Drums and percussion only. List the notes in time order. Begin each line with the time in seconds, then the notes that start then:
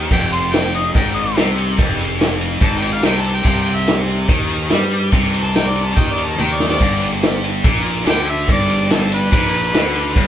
0.11 kick, crash
0.33 ride
0.53 snare, ride
0.74 ride
0.95 kick, ride
1.16 ride
1.37 snare, ride
1.58 ride
1.79 kick, ride
2.01 ride
2.20 snare, ride
2.41 ride
2.61 kick, ride
2.82 ride
3.02 snare, ride
3.24 ride
3.45 kick, crash
3.66 ride
3.87 snare, ride
4.08 ride
4.29 kick, ride
4.50 ride
4.70 snare, ride
4.91 ride
5.12 kick, ride
5.34 ride
5.55 snare, ride
5.76 ride
5.97 kick, ride
6.18 ride
6.38 high tom
6.60 snare
6.70 snare
6.80 kick, crash, splash
7.02 ride
7.23 snare, ride
7.44 ride
7.64 kick, ride
7.86 ride
8.07 snare, ride
8.27 ride
8.48 kick, ride
8.70 ride
8.90 snare, ride
9.12 ride
9.32 kick, ride
9.54 ride
9.74 snare, ride
9.96 ride
10.16 kick, crash